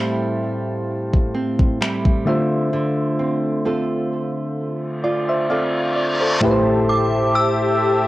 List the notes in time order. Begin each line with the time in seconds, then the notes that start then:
Already playing: A2 G3 A3 C4 E4 G4 C5 F5 A5
1.13 kick
1.34 C4
1.59 kick
1.81 G3 C4 E4, finger snap
2.05 kick
2.25 D3 A3 F4 C5 E5
2.73 D3
3.19 C4
3.65 C4 F4 A4
4.57 reverse cymbal
5.04 F4 D5
5.29 C5 E5
5.50 C4 F4 A4 D5 F5
5.96 D5
6.21 A4 C5
6.40 A2 A3 E4 G4 C5 E5 A5, impact
6.44 B4
6.51 C5
6.89 D6
7.35 E6